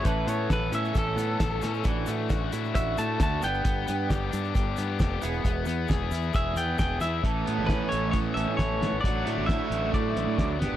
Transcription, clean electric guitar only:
\new Staff \with { instrumentName = "Clean electric guitar" } { \time 4/4 \key a \major \tempo 4 = 134 b'8 cis''8 b'8 e''8 a'2 | r2 e''8 a''8 a''8 g''8~ | g''4. r2 r8 | r2 e''8 g''8 g''8 e''8 |
r4 b'8 cis''8 cis''8 e''8 cis''4 | d''4 e''4 d''4. r8 | }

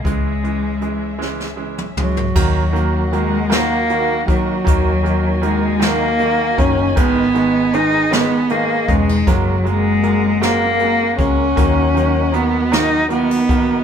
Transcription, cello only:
\new Staff \with { instrumentName = "Cello" } { \time 6/8 \key dis \phrygian \tempo 4. = 52 gis4. r4 fis8~ | fis4 gis8 ais4 fis8~ | fis4 gis8 ais4 cis'8 | b4 dis'8 b8 ais8 gis8 |
fis8 gis4 ais4 cis'8~ | cis'4 b8 dis'8 b4 | }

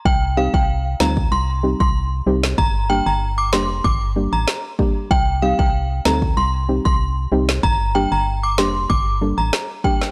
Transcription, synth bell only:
\new Staff \with { instrumentName = "Synth bell" } { \time 4/4 \key c \dorian \tempo 4 = 95 g''16 r16 f''16 g''16 r8 bes''16 r16 c'''16 r8 c'''16 r4 | bes''16 r16 g''16 bes''16 r16 d'''16 c'''16 r16 d'''16 r8 bes''16 r4 | g''16 r16 f''16 g''16 r8 bes''16 r16 c'''16 r8 c'''16 r4 | bes''16 r16 g''16 bes''16 r16 d'''16 c'''16 r16 d'''16 r8 bes''16 r8 g''16 r16 | }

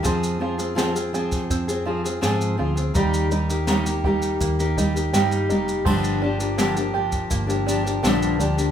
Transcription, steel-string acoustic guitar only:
\new Staff \with { instrumentName = "Steel-string acoustic guitar" } { \time 4/4 \key g \phrygian \tempo 4 = 83 <f c' f' aes'>8 <f c' f' aes'>16 <c' f' aes'>16 <f c' f' aes'>16 <c' f' aes'>16 <f c' f' aes'>8. <c' f' aes'>16 <f c' f' aes'>16 <c' f' aes'>16 <f c' f' aes'>8 <f c' f' aes'>16 <c' f' aes'>16 | <ees g bes ees' g'>8 <g bes ees' g'>16 <bes ees' g'>16 <ees g bes ees' g'>16 <bes ees' g'>16 <g bes ees' g'>8. <bes ees' g'>16 <g bes ees' g'>16 <bes ees' g'>16 <ees g bes ees' g'>8 <g bes ees' g'>8 | <g, d f bes d' g'>8 <f bes d' g'>16 <f bes d' g'>16 <g, d f bes d' g'>16 <f bes d' g'>16 <f bes d' g'>8. <f bes d' g'>16 <f bes d' g'>16 <f bes d' g'>16 <g, d f bes d' g'>8 <f bes d' g'>16 <f bes d' g'>16 | }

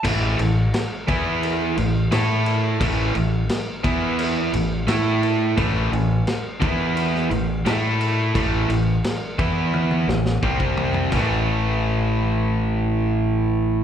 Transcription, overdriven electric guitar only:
\new Staff \with { instrumentName = "Overdriven electric guitar" } { \clef bass \time 4/4 \key e \dorian \tempo 4 = 87 <a, e a>8 <a, e>8 r8 <e b e'>4 <a, e>8 <a e' a'>4 | <a, e a>8 <a, e>8 r8 <e b e'>4 <a, e>8 <a e' a'>4 | <a, e a>8 <a, e>8 r8 <e b e'>4 <a, e>8 <a e' a'>4 | <a, e a>8 <a, e>8 r8 <e b e'>4 <a, e>8 <c g c'>4 |
<a, e a>1 | }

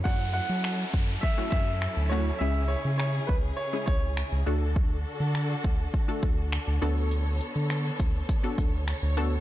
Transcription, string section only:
\new Staff \with { instrumentName = "String section" } { \time 4/4 \key fis \minor \tempo 4 = 102 << { <fis a'>1 | <cis gis'>2.~ <cis gis'>8 <d a'>8~ | <d a'>2.~ <d a'>8 <d a'>8~ | <d a'>1 | } \\ { <cis' e'>1~ | <cis' e'>2.~ <cis' e'>8 <d' fis'>8~ | <d' fis'>2.~ <d' fis'>8 <b cis''>8~ | <b cis''>1 | } >> }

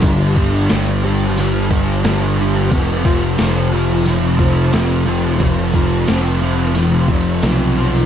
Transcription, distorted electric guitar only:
\new Staff \with { instrumentName = "Distorted electric guitar" } { \clef bass \time 4/4 \key f \lydian \tempo 4 = 89 <g, d g>8 <d g>8 <g, d g>8 <d g>8 <g, d g>8 <d g>8 <g, d g>8 <d g>8 | <f, c f>8 <c f>8 <f, c f>8 <c f>8 <f, c f>8 <c f>8 <f, c f>8 <c f>8 | <f, c f>8 <c f>8 <f, c f>8 <c f>8 <f, c f>8 <c f>8 <f, c f>8 <c f>8 | }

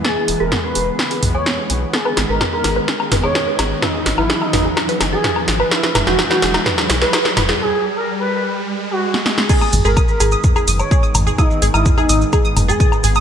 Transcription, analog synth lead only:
\new Staff \with { instrumentName = "Analog synth lead" } { \time 4/4 \key gis \minor \tempo 4 = 127 gis'8 r16 ais'16 r16 b'8 r4 cis''8 r8. | gis'8 r16 ais'16 r16 ais'8 r4 cis''8 r8. | dis'8 r16 e'16 r16 dis'8 r4 gis'8 r8. | e'8 r16 fis'16 r16 fis'8 r4 b'8 r8. |
gis'8 r16 ais'16 r16 b'8 r4 fis'8 r8. | gis'8 r16 ais'16 r16 ais'8 r4 cis''8 r8. | dis'8 r16 e'16 r16 dis'8 r4 gis'8 r8. | }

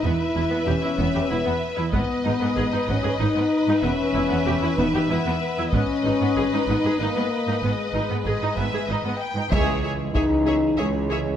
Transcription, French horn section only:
\new Staff \with { instrumentName = "French horn section" } { \time 3/4 \key gis \minor \tempo 4 = 95 e'4 cis'4 b8 r8 | b4. cis'8 dis'4 | cis'4. dis'8 b4 | cis'4. dis'8 ais4 |
gis2~ gis8 r8 | \key cis \dorian gis4 dis'4 cis'4 | }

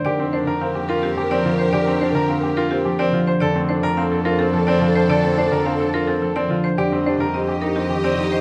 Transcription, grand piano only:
\new Staff \with { instrumentName = "Grand piano" } { \time 3/4 \key g \minor \tempo 4 = 107 g'16 c'16 d'16 bes'16 c'16 g'16 f'16 c'16 g'16 c'16 f'16 c''16 | g'16 c'16 d'16 bes'16 c'16 g'16 f'16 c'16 g'16 c'16 f'16 c''16 | a'16 c'16 d'16 bes'16 c'16 a'16 f'16 c'16 a'16 c'16 f'16 c''16 | a'16 c'16 d'16 bes'16 c'16 a'16 f'16 c'16 a'16 c'16 f'16 c''16 |
g'16 c'16 d'16 bes'16 c'16 g'16 ees'16 c'16 g'16 c'16 ees'16 c''16 | }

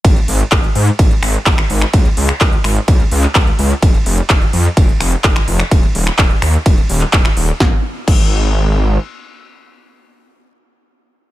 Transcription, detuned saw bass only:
\new Staff \with { instrumentName = "Detuned saw bass" } { \clef bass \time 4/4 \key des \lydian \tempo 4 = 127 aes,,8 aes,,8 aes,,8 aes,8 aes,,8 aes,,8 aes,,8 aes,,8 | des,8 des,8 des,8 aes,,8 des,8 des,8 des,8 des,8 | f,,8 f,,8 f,,8 f,8 f,,8 f,,8 f,,8 f,,8 | ees,,8 ees,,8 ees,,8 ees,8 ees,,8 ees,,8 ees,,8 ees,,8 |
aes,,8 r8 aes,,2 r4 | r1 | }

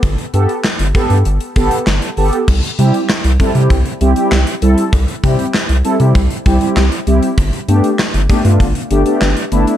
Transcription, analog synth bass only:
\new Staff \with { instrumentName = "Analog synth bass" } { \clef bass \time 4/4 \key c \major \tempo 4 = 98 g,,16 r16 g,16 r8 g,,16 r16 g,16 g,,16 r16 g,,16 r16 g,,16 r16 g,,16 r16 | c,16 r16 c16 r8 c,16 r16 c16 c,16 r16 c,16 r16 c,16 r16 c,16 r16 | c,16 r16 c16 r8 c,16 r16 c16 c,16 r16 c,16 r16 c,16 r16 c,16 r16 | g,,16 r16 g,16 r8 g,,16 r16 g,16 g,,16 r16 g,,16 r16 g,,16 r16 g,,16 r16 | }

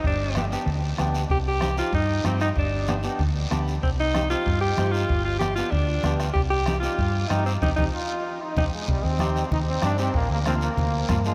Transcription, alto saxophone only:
\new Staff \with { instrumentName = "Alto saxophone" } { \time 4/4 \key c \minor \tempo 4 = 190 d'4. r2 r8 | g'8 g'4 f'8 ees'4 c'8 ees'8 | d'4. r2 r8 | c'8 ees'4 f'4 g'4 f'8~ |
f'8 f'8 g'8 f'8 d'4. r8 | g'8 g'4 f'4. ees'8 c'8 | ees'8 ees'8 r2 ees'8 r8 | r1 |
r1 | }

